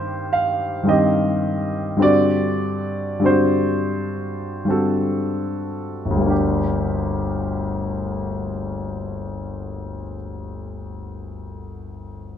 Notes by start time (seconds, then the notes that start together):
Already playing: G2 D#3 C4 G4 C5
0.33 F5
0.83 G2 D#3 C4
0.89 G4 D#5
1.96 G2 D3 C4
2.02 F#4 D5
3.19 G2 D3
3.24 C4 F#4 C5
4.65 G2 D3 C4
4.70 F#4 A4
6.05 G1
6.10 D2
6.16 G3
6.21 A#3
6.26 D4 G4